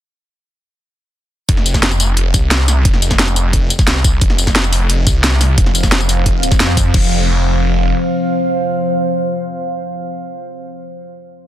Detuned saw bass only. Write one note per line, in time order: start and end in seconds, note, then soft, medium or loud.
1.49 2.33 F1 medium
2.34 2.84 C2 loud
2.85 3.69 F1 loud
3.87 4.20 C2 medium
4.21 5.05 F1 loud
5.07 5.56 C2 loud
5.58 6.08 F1 loud
6.09 6.59 F1 loud
6.60 6.93 F2 medium
6.94 7.92 F1 loud